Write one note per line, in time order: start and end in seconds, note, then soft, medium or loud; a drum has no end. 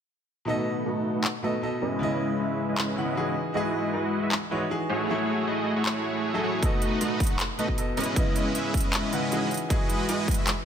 0.45 1.40 B2 medium
0.45 0.83 A3 medium
0.45 1.41 B3 medium
0.45 0.83 D#4 medium
0.45 0.83 F#4 medium
0.45 1.41 A4 medium
0.45 0.83 B4 medium
0.45 0.83 D#5 medium
0.49 1.42 D#5 loud
0.86 1.12 A3 medium
0.86 1.12 D#4 medium
0.86 1.12 F#4 medium
0.86 1.12 B4 medium
0.86 1.12 D#5 medium
1.14 1.26 A3 medium
1.14 1.26 D#4 medium
1.14 1.26 F#4 medium
1.14 1.26 B4 medium
1.14 1.26 F#5 medium
1.24 clap loud
1.42 1.60 B2 medium
1.42 1.55 A3 medium
1.42 1.60 B3 medium
1.42 1.55 D#4 medium
1.42 1.55 F#4 medium
1.42 1.60 A4 medium
1.42 1.55 B4 medium
1.42 1.55 D#5 medium
1.42 1.61 D#5 medium
1.62 1.98 B2 medium
1.62 1.99 B3 medium
1.62 1.99 A4 medium
1.62 1.99 D#5 medium
1.82 2.37 G#3 loud
1.82 2.37 C#4 medium
1.82 2.37 E4 medium
1.82 2.37 B4 medium
1.82 2.37 D#5 loud
1.99 2.94 C#3 medium
1.99 2.95 B3 medium
1.99 2.95 E4 medium
2.03 2.96 D#5 medium
2.39 2.66 G#3 medium
2.39 2.66 C#4 medium
2.39 2.66 E4 medium
2.39 2.66 B4 medium
2.39 2.66 E5 loud
2.68 3.34 G#3 medium
2.68 3.34 C#4 medium
2.68 3.34 E4 medium
2.68 3.34 B4 medium
2.68 3.34 D#5 loud
2.78 clap medium
2.96 3.14 C#3 medium
2.96 3.14 B3 medium
2.96 3.14 E4 medium
2.96 3.15 F#5 medium
3.15 3.51 E3 medium
3.15 3.52 D#4 medium
3.15 3.53 F#4 medium
3.15 3.53 G#4 medium
3.53 4.48 E3 medium
3.53 3.91 G#3 medium
3.53 3.91 E4 medium
3.53 3.91 F#4 medium
3.53 4.49 F#4 medium
3.53 3.91 B4 medium
3.53 4.48 D#5 medium
3.53 3.91 D#5 medium
3.57 4.50 G#4 loud
3.93 4.20 G#3 medium
3.93 4.20 E4 medium
3.93 4.20 F#4 medium
3.93 4.20 B4 medium
3.93 4.20 D#5 loud
4.22 4.34 G#3 medium
4.22 4.34 E4 medium
4.22 4.34 F#4 medium
4.22 4.34 B4 medium
4.22 4.34 E5 medium
4.32 clap medium
4.50 4.67 E3 medium
4.50 4.63 G#3 medium
4.50 4.68 D#4 medium
4.50 4.63 E4 medium
4.50 4.63 F#4 medium
4.50 4.68 F#4 medium
4.50 4.63 B4 medium
4.50 4.68 C#5 medium
4.50 4.63 D#5 medium
4.69 5.06 E3 medium
4.69 5.06 D#4 medium
4.69 5.07 F#4 medium
4.69 5.07 G#4 medium
4.89 5.45 A3 loud
4.89 5.45 E4 medium
4.89 5.45 F#4 medium
4.89 5.45 G#4 medium
4.89 5.45 C#5 loud
5.07 6.02 F#3 medium
5.07 6.04 A3 loud
5.07 6.02 E4 medium
5.07 6.03 G#4 medium
5.47 5.74 A3 medium
5.47 5.74 E4 medium
5.47 5.74 F#4 medium
5.47 5.74 G#4 medium
5.47 5.74 D#5 loud
5.76 6.32 A3 medium
5.76 6.32 E4 medium
5.76 6.32 F#4 medium
5.76 6.32 G#4 medium
5.76 6.32 C#5 medium
5.86 clap medium
6.33 6.60 F#3 medium
6.33 6.41 A3 medium
6.33 6.60 E4 medium
6.33 6.41 E4 medium
6.33 6.41 F#4 medium
6.33 6.41 G#4 medium
6.33 6.60 G#4 medium
6.33 6.61 A4 loud
6.33 6.41 D#5 medium
6.43 6.60 A3 medium
6.43 6.60 E4 medium
6.43 6.60 F#4 medium
6.43 6.60 G#4 medium
6.43 6.60 C#5 loud
6.61 7.55 B2 medium
6.61 6.99 A3 medium
6.61 7.56 B3 medium
6.61 6.99 D#4 medium
6.61 6.99 F#4 medium
6.61 7.57 A4 medium
6.61 6.99 B4 medium
6.61 6.99 D#5 medium
6.61 kick loud
6.61 closed hi-hat medium
6.65 7.57 D#5 loud
6.82 closed hi-hat medium
7.01 7.28 A3 medium
7.01 7.28 D#4 medium
7.01 7.28 F#4 medium
7.01 7.28 B4 medium
7.01 7.28 D#5 loud
7.01 closed hi-hat medium
7.20 kick loud
7.20 closed hi-hat soft
7.23 closed hi-hat medium
7.27 7.41 A3 medium
7.27 7.41 D#4 medium
7.27 7.41 F#4 medium
7.27 7.41 B4 medium
7.27 7.41 F#5 medium
7.27 closed hi-hat medium
7.39 clap loud
7.39 closed hi-hat medium
7.58 7.75 B2 medium
7.58 7.70 A3 medium
7.58 7.75 B3 medium
7.58 7.70 D#4 medium
7.58 7.70 F#4 medium
7.58 7.76 A4 medium
7.58 7.70 B4 medium
7.58 7.70 D#5 medium
7.58 7.76 D#5 medium
7.58 closed hi-hat medium
7.68 kick medium
7.77 8.14 B2 medium
7.77 8.14 B3 medium
7.77 8.14 A4 medium
7.77 8.15 D#5 medium
7.77 closed hi-hat medium
7.97 8.53 G#3 loud
7.97 8.53 C#4 medium
7.97 8.53 E4 medium
7.97 8.53 B4 medium
7.97 8.53 D#5 loud
7.97 closed hi-hat soft
8.00 closed hi-hat medium
8.04 closed hi-hat medium
8.14 9.09 C#3 medium
8.14 9.10 B3 medium
8.14 9.11 E4 medium
8.14 9.11 D#5 loud
8.14 kick loud
8.14 closed hi-hat medium
8.36 closed hi-hat medium
8.55 8.81 G#3 medium
8.55 8.81 C#4 medium
8.55 8.81 E4 medium
8.55 8.81 B4 medium
8.55 8.81 E5 loud
8.55 closed hi-hat medium
8.74 kick medium
8.74 closed hi-hat soft
8.77 closed hi-hat medium
8.81 9.50 G#3 medium
8.81 9.50 C#4 medium
8.81 9.50 E4 medium
8.81 9.50 B4 medium
8.81 9.50 D#5 loud
8.81 closed hi-hat medium
8.93 clap loud
8.93 closed hi-hat medium
9.12 9.29 C#3 medium
9.12 9.29 B3 medium
9.12 9.30 E4 medium
9.12 9.30 F#5 medium
9.12 closed hi-hat medium
9.31 9.67 E3 medium
9.31 9.68 D#4 medium
9.31 9.68 F#4 medium
9.31 9.68 G#4 medium
9.31 closed hi-hat medium
9.51 closed hi-hat soft
9.54 closed hi-hat medium
9.57 closed hi-hat medium
9.68 10.63 E3 medium
9.68 10.06 G#3 medium
9.68 10.06 E4 medium
9.68 10.06 F#4 medium
9.68 10.64 F#4 medium
9.68 10.65 G#4 loud
9.68 10.06 B4 medium
9.68 10.64 D#5 medium
9.68 10.06 D#5 medium
9.68 kick loud
9.68 closed hi-hat medium
9.90 closed hi-hat medium
10.09 10.35 G#3 medium
10.09 10.35 E4 medium
10.09 10.35 F#4 medium
10.09 10.35 B4 medium
10.09 10.35 D#5 loud
10.09 closed hi-hat medium
10.28 kick medium
10.28 closed hi-hat soft
10.31 closed hi-hat medium
10.34 10.49 G#3 medium
10.34 10.49 E4 medium
10.34 10.49 F#4 medium
10.34 10.49 B4 medium
10.34 10.49 E5 medium
10.34 closed hi-hat medium
10.47 clap loud
10.47 closed hi-hat medium